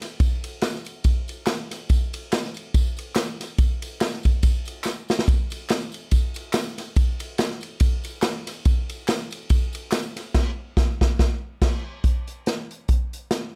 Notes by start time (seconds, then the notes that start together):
0.01 snare, ride, tambourine
0.20 kick, ride, tambourine
0.44 ride, tambourine
0.61 snare, clap, ride, tambourine
0.74 snare
0.85 ride, tambourine
1.04 kick, ride, tambourine
1.28 ride, tambourine
1.46 snare, clap, ride, tambourine
1.71 snare, ride, tambourine
1.89 kick, ride, tambourine
2.13 ride, tambourine
2.32 snare, clap, ride, tambourine
2.45 snare
2.54 ride, tambourine
2.74 kick, ride, tambourine
2.97 ride, tambourine
3.15 snare, clap, ride, tambourine
3.40 snare, ride, tambourine
3.58 kick, ride, tambourine
3.82 ride, tambourine
4.00 snare, clap, ride, tambourine
4.13 snare
4.23 kick, ride, tambourine
4.43 kick, ride, tambourine
4.65 ride, tambourine
4.84 snare, clap, tambourine
5.09 snare, tambourine
5.19 snare
5.27 kick, ride, tambourine
5.50 ride, tambourine
5.69 snare, clap, ride, tambourine
5.92 ride, tambourine
6.11 kick, ride, tambourine
6.34 ride, tambourine
6.53 snare, clap, ride, tambourine
6.78 snare, ride, tambourine
6.96 kick, ride, tambourine
7.20 ride, tambourine
7.38 snare, clap, ride, tambourine
7.51 snare
7.61 ride, tambourine
7.80 kick, ride, tambourine
8.04 ride, tambourine
8.22 snare, clap, ride, tambourine
8.47 snare, ride, tambourine
8.65 kick, ride, tambourine
8.89 ride, tambourine
9.08 snare, clap, ride, tambourine
9.31 ride, tambourine
9.49 kick, ride, tambourine
9.73 ride, tambourine
9.91 snare, clap, ride, tambourine
10.16 snare, ride, tambourine
10.34 kick, snare, crash
10.77 kick, snare
11.01 kick, snare
11.19 kick, snare
11.62 kick, snare, crash
12.04 kick, closed hi-hat
12.27 closed hi-hat
12.46 snare, closed hi-hat
12.71 closed hi-hat
12.88 kick, closed hi-hat
13.13 closed hi-hat
13.31 snare, closed hi-hat